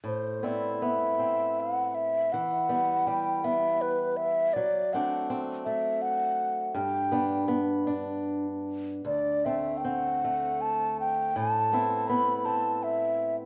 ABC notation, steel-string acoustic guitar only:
X:1
M:3/4
L:1/8
Q:1/4=80
K:Ador
V:1 name="Steel-string acoustic guitar"
A,, [B,CE] B, C3 | E, [G,B,] G, B,3 | F, [A,CD] C A,3 | G,, [B,D] B, D3 |
D,, [A,C] C A,3 | A,, [B,CE] B, C3 |]